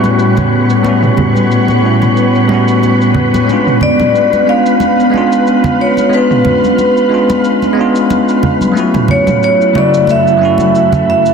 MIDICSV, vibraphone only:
0, 0, Header, 1, 2, 480
1, 0, Start_track
1, 0, Tempo, 659341
1, 617, Time_signature, 4, 2, 24, 8
1, 8254, End_track
2, 0, Start_track
2, 0, Title_t, "Vibraphone"
2, 0, Program_c, 0, 11
2, 2786, Note_on_c, 0, 74, 94
2, 3270, Note_on_c, 0, 77, 89
2, 3276, Note_off_c, 0, 74, 0
2, 4232, Note_on_c, 0, 73, 81
2, 4252, Note_off_c, 0, 77, 0
2, 4472, Note_off_c, 0, 73, 0
2, 4472, Note_on_c, 0, 71, 78
2, 5396, Note_off_c, 0, 71, 0
2, 6631, Note_on_c, 0, 73, 85
2, 6848, Note_off_c, 0, 73, 0
2, 6874, Note_on_c, 0, 73, 86
2, 7112, Note_off_c, 0, 73, 0
2, 7120, Note_on_c, 0, 74, 85
2, 7355, Note_off_c, 0, 74, 0
2, 7358, Note_on_c, 0, 76, 95
2, 8071, Note_off_c, 0, 76, 0
2, 8079, Note_on_c, 0, 76, 88
2, 8254, Note_off_c, 0, 76, 0
2, 8254, End_track
0, 0, End_of_file